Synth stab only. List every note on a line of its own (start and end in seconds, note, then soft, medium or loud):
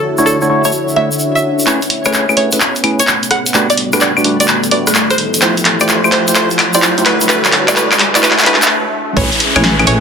0.18 0.38 A3 loud
0.18 0.38 D4 medium
0.18 0.38 E4 medium
0.18 0.38 F#4 medium
0.18 0.38 C#5 loud
0.42 0.48 A3 medium
0.42 0.48 D4 medium
0.42 0.48 E4 medium
0.42 0.48 F#4 medium
0.42 0.48 C#5 medium
0.50 0.63 A3 medium
0.50 0.63 D4 medium
0.50 0.63 E4 medium
0.50 0.63 F#4 medium
0.50 0.63 C#5 medium
0.65 0.72 A3 medium
0.65 0.72 D4 medium
0.65 0.72 E4 medium
0.96 1.09 A3 medium
0.96 1.09 D4 medium
0.96 1.09 E4 medium
0.96 1.09 F#4 medium
0.96 1.09 C#5 medium
1.67 1.80 A3 medium
1.67 1.80 C#4 medium
1.67 1.80 E4 medium
1.67 1.80 G#4 medium
1.67 1.80 B4 loud
2.06 2.25 A3 loud
2.06 2.25 C#4 medium
2.06 2.25 E4 medium
2.06 2.25 G#4 medium
2.06 2.25 B4 loud
2.29 2.36 A3 medium
2.29 2.36 C#4 medium
2.29 2.36 E4 medium
2.29 2.36 G#4 medium
2.29 2.36 B4 medium
2.37 2.50 A3 medium
2.37 2.50 C#4 medium
2.37 2.50 E4 medium
2.37 2.50 G#4 medium
2.37 2.50 B4 medium
2.53 2.59 A3 medium
2.53 2.59 C#4 medium
2.53 2.59 E4 medium
2.53 2.59 G#4 medium
2.53 2.59 B4 medium
2.84 3.02 A3 medium
2.84 3.02 C#4 medium
2.84 3.02 E4 medium
2.84 3.02 G#4 medium
2.84 3.02 B4 medium
3.54 3.67 A3 medium
3.54 3.67 D4 medium
3.54 3.67 F#4 medium
3.54 3.67 G4 medium
3.54 3.67 B4 loud
3.93 4.13 A3 loud
3.93 4.13 D4 medium
3.93 4.13 F#4 medium
3.93 4.13 G4 medium
3.93 4.13 B4 loud
4.17 4.23 A3 medium
4.17 4.23 D4 medium
4.17 4.23 F#4 medium
4.17 4.23 G4 medium
4.17 4.23 B4 medium
4.24 4.38 A3 medium
4.24 4.38 D4 medium
4.24 4.38 F#4 medium
4.24 4.38 G4 medium
4.24 4.38 B4 medium
4.40 4.47 A3 medium
4.40 4.47 D4 medium
4.40 4.47 F#4 medium
4.40 4.47 G4 medium
4.40 4.47 B4 medium
4.71 4.90 A3 medium
4.71 4.90 D4 medium
4.71 4.90 F#4 medium
4.71 4.90 G4 medium
4.71 4.90 B4 medium
5.42 5.55 A3 medium
5.42 5.55 E4 medium
5.42 5.55 F4 medium
5.42 5.55 G4 medium
5.42 5.55 C5 medium
5.81 6.01 A3 medium
5.81 6.01 E4 medium
5.81 6.01 F4 medium
5.81 6.01 G4 medium
5.81 6.01 C5 loud
6.04 6.11 A3 medium
6.04 6.11 E4 medium
6.04 6.11 F4 medium
6.04 6.11 G4 medium
6.04 6.11 C5 medium
6.12 6.25 A3 medium
6.12 6.25 E4 medium
6.12 6.25 F4 medium
6.12 6.25 G4 medium
6.28 6.34 A3 medium
6.28 6.34 E4 medium
6.28 6.34 F4 medium
6.28 6.34 G4 medium
6.28 6.34 C5 medium
6.35 6.49 A3 medium
6.35 6.49 E4 medium
6.35 6.49 F4 medium
6.35 6.49 G4 medium
6.35 6.49 C5 loud
6.75 6.94 A3 medium
6.75 6.94 E4 medium
6.75 6.94 F4 medium
6.75 6.94 G4 medium
6.75 6.94 C5 loud
6.98 7.04 A3 medium
6.98 7.04 E4 medium
6.98 7.04 F4 medium
6.98 7.04 G4 medium
6.98 7.04 C5 medium
7.06 7.19 A3 medium
7.06 7.19 E4 medium
7.06 7.19 F#4 medium
7.06 7.19 B4 medium
7.21 7.28 A3 medium
7.21 7.28 E4 medium
7.21 7.28 F#4 medium
7.21 7.28 B4 medium
7.29 7.42 A3 medium
7.29 7.42 E4 medium
7.29 7.42 F#4 medium
7.29 7.42 B4 loud
7.68 7.75 A3 loud
7.68 7.75 E4 medium
7.68 7.75 F#4 medium
7.68 7.75 B4 loud
7.76 7.89 A3 medium
7.76 7.89 E4 medium
7.76 7.89 F#4 medium
7.76 7.89 B4 loud
8.15 8.22 A3 loud
8.15 8.22 E4 medium
8.15 8.22 F#4 medium
8.15 8.22 B4 loud
8.23 8.36 A3 medium
8.23 8.36 E4 medium
8.23 8.36 F#4 medium
8.23 8.36 B4 loud
8.46 8.59 A3 medium
8.46 8.59 E4 medium
8.46 8.59 F#4 medium
8.46 8.59 B4 loud
9.17 9.30 A3 medium
9.17 9.30 C#4 medium
9.17 9.30 E4 medium
9.17 9.30 G#4 medium
9.17 9.30 B4 loud
9.56 9.76 A3 loud
9.56 9.76 C#4 medium
9.56 9.76 E4 medium
9.56 9.76 G#4 medium
9.56 9.76 B4 loud
9.79 9.86 A3 medium
9.79 9.86 C#4 medium
9.79 9.86 E4 medium
9.79 9.86 G#4 medium
9.79 9.86 B4 medium
9.87 10.00 A3 medium
9.87 10.00 C#4 medium
9.87 10.00 E4 medium
9.87 10.00 G#4 medium
9.87 10.00 B4 medium